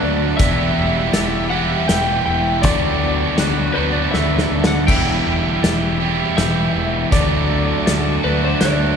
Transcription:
0.00 0.32 D2 loud
0.00 0.38 D3 medium
0.00 0.39 D3 medium
0.00 0.38 F#3 medium
0.00 0.38 A3 medium
0.00 0.40 A3 medium
0.00 0.38 D4 medium
0.00 0.39 D4 medium
0.00 0.37 F#4 loud
0.00 0.37 F#4 medium
0.00 0.39 F#4 medium
0.00 0.36 D5 loud
0.00 0.38 D5 medium
0.00 0.37 A5 medium
0.00 0.39 F#6 medium
0.37 0.69 E1 loud
0.37 2.26 E2 medium
0.37 1.49 E3 loud
0.37 1.53 B3 loud
0.37 1.50 E4 loud
0.37 2.62 G4 medium
0.37 1.46 E5 loud
0.37 2.61 E5 medium
0.37 7.08 B5 medium
0.37 1.14 E6 loud
0.37 kick loud
0.37 closed hi-hat medium
0.41 1.50 G4 loud
0.77 1.07 E1 loud
0.77 1.51 G3 medium
1.13 1.74 E1 loud
1.13 2.64 G4 medium
1.13 1.88 A6 medium
1.13 snare medium
1.13 closed hi-hat medium
1.50 2.63 E3 medium
1.50 2.64 G3 medium
1.50 2.65 B3 medium
1.50 2.62 E4 medium
1.50 2.61 G4 loud
1.50 1.85 F#5 loud
1.88 2.19 E1 loud
1.88 2.64 E3 medium
1.88 2.24 G5 loud
1.88 2.63 G6 medium
1.88 snare medium
1.88 closed hi-hat medium
2.26 2.64 E1 medium
2.26 3.01 B3 medium
2.26 2.64 G5 loud
2.62 3.23 D2 loud
2.62 3.73 D3 medium
2.62 4.13 D3 medium
2.62 3.74 F#3 medium
2.62 3.76 B3 medium
2.62 3.74 D4 loud
2.62 4.86 F#4 medium
2.62 3.71 D5 loud
2.62 4.86 D5 medium
2.62 3.38 D6 loud
2.62 kick loud
2.62 closed hi-hat medium
2.66 3.74 F#4 loud
3.01 4.88 B3 medium
3.38 3.68 D2 medium
3.38 4.88 F#4 medium
3.38 4.13 F#6 medium
3.38 snare loud
3.38 closed hi-hat medium
3.74 4.06 D2 medium
3.74 4.86 F#3 medium
3.74 4.86 B3 medium
3.74 4.86 D4 medium
3.74 4.85 F#4 loud
3.74 3.92 B4 loud
3.74 4.11 C5 medium
3.78 4.87 D3 medium
3.92 4.13 D5 medium
4.11 4.43 D2 medium
4.11 4.88 D3 medium
4.11 4.67 E5 loud
4.11 4.87 E6 medium
4.11 snare medium
4.39 snare medium
4.51 4.90 D2 medium
4.51 4.88 D4 medium
4.64 4.85 F#5 medium
4.64 snare loud
4.87 5.18 E1 loud
4.87 6.75 E2 medium
4.87 5.97 E3 medium
4.87 5.98 B3 medium
4.87 5.98 E4 loud
4.87 7.09 G4 medium
4.87 5.99 G4 loud
4.87 7.09 E5 medium
4.87 6.37 G5 loud
4.87 5.63 E6 loud
4.87 kick loud
4.87 crash loud
4.87 splash medium
5.26 5.56 E1 medium
5.26 5.99 G3 medium
5.63 6.22 E1 medium
5.63 7.12 G4 medium
5.63 6.37 A6 medium
5.63 snare medium
5.63 closed hi-hat medium
6.00 7.11 E3 medium
6.00 7.12 G3 medium
6.00 7.10 B3 medium
6.00 7.10 E4 medium
6.00 7.10 G4 medium
6.37 6.67 E1 loud
6.37 7.11 E3 medium
6.37 7.12 E5 loud
6.37 7.12 G6 medium
6.37 snare medium
6.37 closed hi-hat medium
6.75 7.04 E1 medium
6.75 7.12 B3 medium
7.11 7.71 D2 medium
7.11 8.21 D3 medium
7.11 8.60 D3 medium
7.11 8.21 F#3 loud
7.11 8.22 A3 loud
7.11 8.22 D4 loud
7.11 8.96 F#4 medium
7.11 8.22 F#4 loud
7.11 8.96 D5 medium
7.11 7.82 D5 medium
7.11 8.96 A5 medium
7.11 7.87 D6 loud
7.11 kick loud
7.11 closed hi-hat medium
7.49 8.23 A3 medium
7.86 8.17 D2 medium
7.86 8.96 F#4 medium
7.86 8.61 A6 medium
7.86 snare medium
7.86 closed hi-hat medium
8.23 8.54 D2 medium
8.23 8.96 D3 medium
8.23 8.96 F#3 medium
8.23 8.96 A3 medium
8.23 8.96 D4 medium
8.23 8.96 F#4 medium
8.23 8.41 B4 medium
8.44 8.62 C5 medium
8.60 8.91 D2 loud
8.60 8.96 D3 medium
8.60 8.96 D5 medium
8.60 8.96 F#6 medium
8.60 snare medium
8.60 closed hi-hat medium

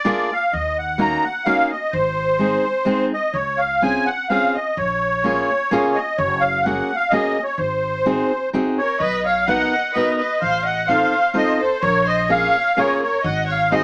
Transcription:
0.00 0.34 D5 loud
0.05 0.30 A#3 medium
0.05 0.29 D4 medium
0.05 0.30 F4 medium
0.05 0.30 G#4 medium
0.33 0.54 F5 medium
0.53 1.14 D#2 loud
0.53 0.78 D#5 medium
0.78 1.01 F#5 medium
0.98 1.23 A#3 medium
0.98 1.23 C#4 medium
0.98 1.24 D#4 medium
0.98 1.24 F#4 medium
0.98 1.25 A#5 medium
1.24 1.47 F#5 medium
1.45 1.70 A#3 medium
1.45 1.70 C#4 medium
1.45 1.71 D#4 medium
1.45 1.71 F#4 medium
1.45 1.71 F5 loud
1.71 1.94 D#5 medium
1.92 2.55 G#1 loud
1.92 3.08 C5 medium
2.39 2.64 G#3 medium
2.39 2.64 C4 soft
2.39 2.65 D#4 medium
2.39 2.65 G#4 medium
2.85 3.11 G#3 medium
2.85 3.12 C4 medium
2.85 3.12 D#4 medium
2.85 3.12 G#4 medium
3.13 3.36 D#5 medium
3.34 3.96 C#2 loud
3.34 3.60 C#5 medium
3.58 3.83 F5 medium
3.82 4.08 C4 medium
3.82 4.08 C#4 medium
3.82 4.08 F4 medium
3.82 4.08 G#4 medium
3.82 4.09 G#5 medium
4.06 4.28 F#5 medium
4.29 4.55 C4 medium
4.29 4.55 C#4 medium
4.29 4.55 F4 medium
4.29 4.56 G#4 medium
4.29 4.56 F5 medium
4.54 4.78 D#5 medium
4.77 5.38 A#1 medium
4.77 5.99 C#5 medium
5.24 5.49 A#3 medium
5.24 5.49 C#4 medium
5.24 5.49 F4 medium
5.24 5.50 G#4 medium
5.71 5.96 A#3 medium
5.71 5.96 C#4 medium
5.71 5.97 F4 medium
5.71 5.97 G#4 loud
5.95 6.18 D#5 medium
6.18 6.79 F#1 loud
6.18 6.43 C#5 medium
6.40 6.65 F5 medium
6.63 6.90 A#3 medium
6.63 6.90 C#4 medium
6.63 6.96 F#5 medium
6.67 6.91 F#4 medium
6.67 6.91 G#4 medium
6.96 7.12 F5 medium
7.10 7.37 A#3 medium
7.10 7.37 C#4 medium
7.10 7.37 F#4 medium
7.10 7.37 G#4 medium
7.10 7.43 D#5 medium
7.44 7.60 C#5 medium
7.58 8.20 G#1 medium
7.58 8.49 C5 medium
8.06 8.31 C4 medium
8.06 8.31 D#4 medium
8.06 8.31 F#4 medium
8.06 8.31 G#4 medium
8.53 8.79 C4 medium
8.53 8.79 D#4 medium
8.53 8.79 F#4 medium
8.53 8.79 G#4 medium
8.78 9.00 A#4 medium
8.78 9.02 C#5 medium
8.98 9.62 B1 medium
8.98 9.24 B4 medium
8.98 9.25 D#5 medium
9.25 9.47 C#5 medium
9.25 9.49 F5 medium
9.46 9.73 B3 medium
9.46 9.73 D#4 medium
9.46 9.73 F#4 medium
9.46 9.73 A#4 medium
9.46 9.92 D#5 medium
9.46 9.96 F#5 medium
9.93 10.20 B3 medium
9.93 10.20 D#4 soft
9.93 10.20 F#4 medium
9.93 10.20 A#4 medium
9.93 10.17 B4 medium
9.93 10.16 D#5 medium
10.17 10.40 B4 medium
10.17 10.41 D#5 medium
10.41 11.03 A1 loud
10.41 10.64 C5 medium
10.41 10.67 F5 medium
10.65 10.87 D#5 medium
10.65 10.89 F#5 medium
10.88 11.13 C4 medium
10.88 11.13 D#4 medium
10.88 11.14 F4 soft
10.88 11.14 A4 medium
10.88 11.32 C5 medium
10.88 11.36 F5 medium
11.34 11.59 C4 medium
11.34 11.59 D#4 medium
11.34 11.59 F4 medium
11.34 11.60 A4 medium
11.34 11.58 C5 medium
11.34 11.61 D#5 medium
11.60 11.81 A4 medium
11.60 11.83 C5 medium
11.82 12.44 A#1 loud
11.82 12.05 A#4 medium
11.82 12.08 C#5 loud
12.05 12.27 C5 medium
12.05 12.31 D#5 medium
12.27 12.54 A#3 medium
12.27 12.54 C#4 medium
12.27 12.55 F4 medium
12.27 12.55 G#4 medium
12.27 12.73 C#5 medium
12.27 12.79 F5 medium
12.77 13.02 A#3 medium
12.77 13.02 C#4 medium
12.77 13.02 F4 medium
12.77 13.02 G#4 medium
12.77 13.00 A#4 medium
12.77 13.01 C#5 medium
13.00 13.22 A#4 medium
13.00 13.26 C#5 medium
13.23 13.84 G#1 loud
13.23 13.47 D#5 medium
13.23 13.51 F#5 medium
13.48 13.70 C#5 medium
13.48 13.74 F5 medium
13.72 13.84 C4 medium
13.72 13.84 D#4 medium
13.72 13.84 F#4 medium
13.72 13.84 G#4 medium
13.72 13.84 C5 medium
13.72 13.84 D#5 loud

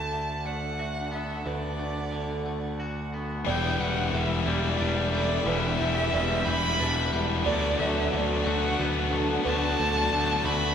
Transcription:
0.00 1.42 D2 medium
0.00 0.10 D3 medium
0.00 3.42 D3 medium
0.00 0.44 A3 medium
0.00 1.11 D4 medium
0.00 3.42 D4 medium
0.00 3.42 A4 medium
0.00 0.12 D5 medium
0.00 3.42 F#5 medium
0.00 0.47 A5 loud
0.11 1.44 D3 medium
0.11 0.46 E5 medium
0.45 1.78 A3 medium
0.45 0.79 D5 medium
0.45 1.15 F#5 medium
0.79 2.46 F#4 medium
0.79 1.46 E5 medium
1.12 2.79 B3 medium
1.12 1.49 E5 medium
1.45 3.42 D2 medium
1.45 2.11 D3 medium
1.45 2.13 B4 medium
1.45 2.80 D5 medium
1.79 2.45 A3 medium
2.12 3.46 D3 medium
2.46 3.46 A3 medium
2.80 3.46 F#4 medium
3.14 3.47 B3 medium
3.45 3.76 E1 loud
3.45 5.13 E2 medium
3.45 4.49 E3 loud
3.45 7.41 E3 medium
3.45 4.47 G3 loud
3.45 4.47 B3 medium
3.45 10.75 D4 medium
3.45 4.45 E4 loud
3.45 7.42 G4 medium
3.45 4.13 D5 loud
3.45 7.42 E5 medium
3.45 3.82 G5 loud
3.80 4.09 E1 medium
3.80 4.45 G3 medium
3.80 4.15 F#5 medium
4.13 4.42 E1 medium
4.13 5.80 E3 medium
4.13 4.48 E5 medium
4.46 4.75 E1 loud
4.46 5.45 E3 medium
4.46 5.12 G3 medium
4.46 5.45 G3 medium
4.46 5.48 B3 medium
4.46 5.44 E4 medium
4.46 5.12 D5 loud
4.80 5.38 E1 medium
4.80 6.79 D4 medium
5.12 5.79 G3 medium
5.12 5.47 A4 medium
5.12 5.47 D5 loud
5.46 5.75 E1 loud
5.46 7.13 E2 medium
5.46 6.44 E3 loud
5.46 6.45 G3 loud
5.46 6.47 B3 loud
5.46 6.45 E4 loud
5.46 6.13 B4 loud
5.46 6.47 E5 loud
5.79 6.09 E1 medium
5.79 6.45 G3 medium
6.13 6.42 E1 loud
6.13 7.45 E3 medium
6.13 6.80 D5 medium
6.46 6.76 E1 loud
6.46 7.45 E3 medium
6.46 7.11 G3 medium
6.46 7.45 G3 medium
6.46 7.47 B3 medium
6.46 7.44 E4 medium
6.46 7.21 B5 loud
6.79 7.09 E1 loud
6.79 8.79 D4 medium
6.79 7.46 B4 medium
7.12 7.42 E1 medium
7.12 7.46 G3 medium
7.44 7.75 D2 loud
7.44 10.75 D3 medium
7.44 8.11 D3 medium
7.44 8.47 D3 medium
7.44 8.46 F#3 loud
7.44 8.45 B3 medium
7.44 8.43 F#4 loud
7.44 10.75 A4 medium
7.44 7.81 D5 loud
7.44 8.12 D5 loud
7.44 10.75 F#5 medium
7.79 8.08 D2 loud
7.79 8.45 A3 medium
7.79 8.14 E5 medium
8.12 8.42 D2 loud
8.12 9.44 D3 medium
8.12 8.48 D5 medium
8.44 8.75 D2 loud
8.44 9.43 D3 medium
8.44 9.43 F#3 medium
8.44 9.11 A3 medium
8.44 9.46 B3 medium
8.44 9.42 F#4 medium
8.44 9.12 F#5 loud
8.80 9.37 D2 medium
8.80 10.48 B3 medium
9.11 9.78 A3 medium
9.11 9.45 A4 medium
9.44 9.75 D2 loud
9.44 10.42 D3 medium
9.44 10.11 D3 medium
9.44 10.43 F#3 loud
9.44 10.44 B3 loud
9.44 10.42 F#4 loud
9.44 10.11 B4 loud
9.44 10.47 A5 loud
9.79 10.08 D2 medium
9.79 10.44 A3 medium
10.12 10.41 D2 medium
10.12 10.75 D3 medium
10.12 10.75 D5 medium
10.44 10.73 D2 loud
10.44 10.75 D3 medium
10.44 10.75 F#3 medium
10.44 10.75 A3 medium
10.44 10.75 B3 medium
10.44 10.75 F#4 medium
10.44 10.75 B5 loud

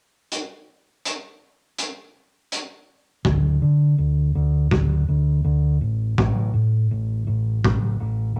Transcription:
0.32 closed hi-hat medium
1.05 closed hi-hat medium
1.78 closed hi-hat soft
2.52 closed hi-hat soft
3.25 3.57 D2 medium
3.25 kick medium
3.62 3.94 D3 medium
3.98 4.30 D2 medium
4.35 4.67 D2 medium
4.71 5.04 D2 medium
4.71 kick medium
5.08 5.41 D2 medium
5.44 5.77 D2 medium
5.81 6.13 A1 medium
6.18 6.50 A1 medium
6.18 kick loud
6.54 6.86 A2 medium
6.91 7.23 A1 medium
7.27 7.60 A1 medium
7.64 7.97 A1 medium
7.64 kick loud
8.00 8.33 A1 medium
8.36 8.40 A1 medium

